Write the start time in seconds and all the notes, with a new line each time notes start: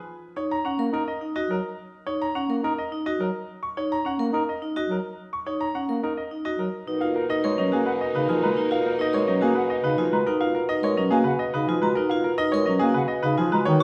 0.37 D#4 C#5
0.51 A#5
0.65 C#4 F#5
0.78 A#3 A#4
0.92 D#4 A#4
1.08 D#5
1.21 D#4
1.36 F#4 D#5
1.50 F#3 A#4
2.06 D#4 C#5
2.22 A#5
2.35 C#4 F#5
2.49 A#3 A#4
2.63 D#4 A#4
2.78 D#5
2.92 D#4
3.06 F#4 D#5
3.20 F#3 A#4
3.63 C#6
3.77 D#4 C#5
3.92 A#5
4.05 C#4 F#5
4.19 A#3 A#4
4.33 D#4 A#4
4.49 D#5
4.62 D#4
4.76 F#4 D#5
4.89 F#3 A#4
5.33 C#6
5.46 D#4 C#5
5.61 A#5
5.75 C#4 F#5
5.89 A#3 A#4
6.03 D#4 A#4
6.17 D#5
6.31 D#4
6.45 F#4 D#5
6.59 F#3 A#4
6.86 B2 A#3 D#4 A#4
7.01 F4 F5
7.16 A#4
7.30 D#4 D#5
7.44 G#3 A#4 C#5
7.58 F#3 C#4 D#5
7.72 A#3 F#4 G#4
7.86 B4 F#5
8.01 D#5
8.15 C#3 D#4 B4
8.29 F3 F4 G#4
8.43 G#3 B4 A#5
8.57 D#4
8.71 F4 F5
8.87 A#4
8.99 D#4 D#5
9.13 G#3 A#4 C#5
9.27 F#3 C#4 D#5
9.42 A#3 F#4 G#4
9.55 B4 F#5
9.70 D#5
9.84 C#3 D#4 B4
9.98 F3 F4 G#4
10.12 G#3 B4 A#5
10.26 D#4 A#4
10.40 F4 F5
10.55 A#4
10.69 D#4 D#5
10.82 G#3 A#4 C#5
10.97 F#3 C#4 D#5
11.11 A#3 F#4 G#4 G#5
11.24 C#3 B4 F#5
11.39 D#5
11.54 C#3 D#4 B4
11.68 F3 F4 G#4
11.82 G#3 F#4 B4 A#5
11.95 D#4 A#4
12.09 F4 F5
12.24 A#4
12.38 D#4 D#5
12.52 G#3 A#4 C#5
12.66 F#3 C#4 D#5
12.79 A#3 F#4 G#4 G#5
12.94 C#3 B4 F#5
13.08 D#5
13.23 C#3 D#4 B4
13.38 F3 F4 G#4
13.52 G#3 F#4 B4 A#5
13.65 B2 D#3 A#3 D#4 F#4 A#4 C#5